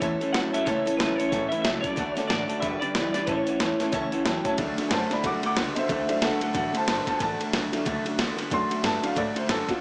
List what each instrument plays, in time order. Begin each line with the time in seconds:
0.00 upright bass E2, steel-string acoustic guitar A2 E3 A3 C#4 E4 A4, clean electric guitar A2 E3 C#5, upright piano C#5 E5 A5, kick, closed hi-hat
0.19 clean electric guitar A2 E3, steel-string acoustic guitar E4 A4, upright piano C#5 E5 A5, muted upright bass stroke, closed hi-hat
0.23 steel-string acoustic guitar A3 C#4
0.33 upright bass D2, clean electric guitar A2 F#3 F#5, steel-string acoustic guitar A3 C#4 E4 A4, upright piano C#5 E5 A5, snare, closed hi-hat
0.51 clean electric guitar A2 F#3 E5, steel-string acoustic guitar C#4 E4 A4, upright piano C#5 E5 A5, muted upright bass stroke, closed hi-hat
0.56 steel-string acoustic guitar A3
0.65 upright bass C#2, steel-string acoustic guitar A2 E3 A3 C#4 E4 A4, clean electric guitar A2 E3 C#5, upright piano C#5 E5 A5, kick, snare, closed hi-hat
0.84 clean electric guitar A2 E3, steel-string acoustic guitar C#4 E4 A4, upright piano C#5 E5 A5, muted upright bass stroke, closed hi-hat
0.89 steel-string acoustic guitar A3
0.97 upright bass B1, clean electric guitar A2 E3 B4, steel-string acoustic guitar A3 C#4 E4, upright piano C#5 E5 A5, snare, closed hi-hat
1.02 steel-string acoustic guitar A4
1.16 clean electric guitar A2 C#5, steel-string acoustic guitar E4 A4, upright piano C#5 E5 A5, muted upright bass stroke
1.20 clean electric guitar E3, steel-string acoustic guitar A3 C#4, closed hi-hat
1.29 upright bass A1, steel-string acoustic guitar A2 E3, clean electric guitar A2 C#5, upright piano C#5 E5 A5, kick, closed hi-hat
1.33 clean electric guitar E3, steel-string acoustic guitar A3 C#4 E4 A4
1.49 clean electric guitar A2 E3 E5, steel-string acoustic guitar E4 A4, upright piano C#5 E5 B5, muted upright bass stroke, closed hi-hat
1.54 steel-string acoustic guitar A3 C#4
1.62 upright bass C#2, clean electric guitar A2 F#3 E5, steel-string acoustic guitar A3 C#4, upright piano C#5 E5 A5, snare, closed hi-hat
1.66 steel-string acoustic guitar E4 A4
1.81 steel-string acoustic guitar E4 A4, upright piano C#5 E5 A5, clean electric guitar D5, muted upright bass stroke, kick, closed hi-hat
1.85 clean electric guitar A2 F#3, steel-string acoustic guitar A3 C#4
1.96 upright bass D2, steel-string acoustic guitar D3 A3 D4 F#4 A4, clean electric guitar D3 A3, upright piano D5 F#5 A5, kick, closed hi-hat
2.14 clean electric guitar D3 C#5, steel-string acoustic guitar F#4 A4, upright piano D5 F#5 A5, muted upright bass stroke, snare, closed hi-hat
2.18 clean electric guitar A3, steel-string acoustic guitar D4
2.28 upright bass A1, clean electric guitar D3 A3 D5, steel-string acoustic guitar A3 D4 F#4 A4, upright piano D5 F#5 A5, snare, closed hi-hat
2.47 clean electric guitar D3 A3, steel-string acoustic guitar D4 F#4 A4, upright piano D5 F#5 A5, muted upright bass stroke, closed hi-hat
2.60 upright bass G1, clean electric guitar G2 D3 E5, steel-string acoustic guitar G3 D4, upright piano D5 G5 B5, kick, closed hi-hat
2.64 steel-string acoustic guitar G4 B4
2.79 clean electric guitar G2 D3 D5, steel-string acoustic guitar G4 B4, upright piano D5 G5 B5, muted upright bass stroke, closed hi-hat
2.85 steel-string acoustic guitar D4
2.94 upright bass B1, clean electric guitar G2 E3, steel-string acoustic guitar G3 D4 G4 B4, upright piano D5 B5, snare, closed hi-hat
3.12 clean electric guitar G2 E3 D5, steel-string acoustic guitar G4 B4, upright piano D5 G5 B5, muted upright bass stroke, snare, closed hi-hat
3.17 steel-string acoustic guitar D4
3.26 upright bass A1, steel-string acoustic guitar A2 E3 A3 C#4 E4 C#5, clean electric guitar A2 E3 C#5, upright piano C#5 E5 A5, kick, closed hi-hat
3.46 clean electric guitar A2 E3, steel-string acoustic guitar A3 C#4 E4 C#5, upright piano C#5 E5 F#5, muted upright bass stroke, closed hi-hat
3.59 upright bass E2, clean electric guitar A2 E3, steel-string acoustic guitar A3 C#4 E4 C#5, upright piano C#5 E5 A5, snare, closed hi-hat
3.78 clean electric guitar A2 E3, steel-string acoustic guitar C#4 E4 C#5, upright piano C#5 E5 A5, muted upright bass stroke, snare, closed hi-hat
3.82 steel-string acoustic guitar A3
3.92 upright bass C#2, steel-string acoustic guitar A2 E3 A3 C#4 E4 C#5, clean electric guitar A2 E3, upright piano C#5 E5 A5, kick, closed hi-hat
4.11 clean electric guitar A2 E3, steel-string acoustic guitar A3 C#4 E4 C#5, upright piano C#5 E5 F#5 A5, muted upright bass stroke, closed hi-hat
4.24 upright bass E2, clean electric guitar A2 F#3, steel-string acoustic guitar A3 C#4 E4, upright piano C#5 E5 G5 A5, snare, closed hi-hat
4.29 steel-string acoustic guitar C#5
4.44 clean electric guitar A2 F#3, steel-string acoustic guitar A3 C#4 E4 C#5, upright piano C#5 E5 A5, kick, closed hi-hat
4.57 upright bass D2, steel-string acoustic guitar D3 A3 D4 F#4 A4, clean electric guitar D3 A3, upright piano F#3 A3 D4, kick, ride
4.78 clean electric guitar D3 A3, steel-string acoustic guitar D4 F#4 A4, muted upright bass stroke, snare, ride
4.89 upright bass F#2, clean electric guitar D3 A3, steel-string acoustic guitar A3 D4, upright piano C5 G#5, snare, ride
4.93 steel-string acoustic guitar F#4 A4, upright piano A5
5.10 clean electric guitar D3 A3, steel-string acoustic guitar D4 F#4 A4, upright piano D5 B5, muted upright bass stroke, snare, ride
5.23 upright bass B1, steel-string acoustic guitar D3 A3 D4 F#4 A4, clean electric guitar D3 A3, upright piano F#5 D6, kick, ride
5.42 clean electric guitar D3 A3, steel-string acoustic guitar D4 F#4 A4, muted upright bass stroke, ride
5.46 upright piano F#5 D6
5.55 upright bass C#2, clean electric guitar D3 B3, steel-string acoustic guitar A3 D4 F#4 A4, snare, ride
5.74 clean electric guitar D3 B3, steel-string acoustic guitar F#4 A4, upright piano C5 D#5, muted upright bass stroke, ride
5.78 steel-string acoustic guitar D4, upright piano E5
5.88 upright bass D2, steel-string acoustic guitar D3 A3 D4 F#4 A4, clean electric guitar D3 A3, upright piano C5 E5, kick, ride
6.07 clean electric guitar D3 A3, upright piano F#3 A3 D4 C5 E5, steel-string acoustic guitar D4 F#4 A4, muted upright bass stroke, ride
6.20 upright bass B1, clean electric guitar D3 A3, steel-string acoustic guitar A3 D4 F#4 A4, upright piano A4 F#5, snare, ride
6.39 clean electric guitar D3 A3, steel-string acoustic guitar D4 F#4 A4, upright piano A4 F#5, muted upright bass stroke, ride
6.53 upright bass A1, steel-string acoustic guitar D3 A3 D4 F#4 A4, clean electric guitar D3 A3, upright piano F#3 A3 D4 A4 F#5, kick, ride
6.73 clean electric guitar D3 A3, steel-string acoustic guitar D4 F#4 A4, upright piano C5, ride
6.77 upright piano A5
6.86 upright bass G1, clean electric guitar D3 B3, steel-string acoustic guitar A3 D4 F#4 A4, upright piano C5 A5, snare, ride
7.06 clean electric guitar D3 B3, steel-string acoustic guitar D4 F#4 A4, upright piano C5 A5, kick, snare, ride
7.18 upright bass A1, steel-string acoustic guitar D3 A3 D4 F#4 A4, clean electric guitar D3 A3, upright piano G#5, kick, snare, ride
7.22 upright piano A5
7.39 clean electric guitar D3 A3, steel-string acoustic guitar D4 F#4 A4, muted upright bass stroke, ride
7.52 upright bass B1, clean electric guitar D3 A3, steel-string acoustic guitar A3 D4 F#4 A4, snare, ride
7.72 clean electric guitar D3 A3, upright piano F#3 A3 D4, steel-string acoustic guitar D4 F#4 A4, muted upright bass stroke, snare, ride
7.85 upright bass C#2, steel-string acoustic guitar D3 A3 D4 F#4 A4, clean electric guitar D3 A3, kick, ride
8.04 clean electric guitar D3 A3, steel-string acoustic guitar D4 F#4 A4, muted upright bass stroke, ride
8.18 upright bass D2, clean electric guitar D3 B3, steel-string acoustic guitar A3 D4 F#4 A4, snare, ride
8.36 clean electric guitar D3 B3, steel-string acoustic guitar D4 F#4 A4, muted upright bass stroke, snare, ride
8.50 upright bass F#2, steel-string acoustic guitar D3 A3 D4 F#4 A4, clean electric guitar D3 A3, upright piano F#3 A3 D4 C6, kick, ride
8.69 clean electric guitar D3 A3, steel-string acoustic guitar D4 F#4 A4, muted upright bass stroke, ride
8.82 upright bass G2, clean electric guitar D3 A3, steel-string acoustic guitar A3 D4 F#4 A4, upright piano A5, snare, ride
9.02 clean electric guitar D3 A3, upright piano F#3 A3 D4 F5, steel-string acoustic guitar D4 F#4 A4, ride
9.15 upright bass A2, steel-string acoustic guitar D3 A3 D4 F#4 A4, clean electric guitar D3 A3, upright piano D5, kick, ride
9.34 clean electric guitar D3 A3, steel-string acoustic guitar D4 F#4 A4, upright piano C5, muted upright bass stroke, ride
9.47 upright bass F#2, clean electric guitar D3 B3, steel-string acoustic guitar A3 D4 F#4 A4, snare, ride
9.51 upright piano A4
9.66 clean electric guitar D3 B3, steel-string acoustic guitar D4 F#4 A4, upright piano F4, muted upright bass stroke, kick, snare, ride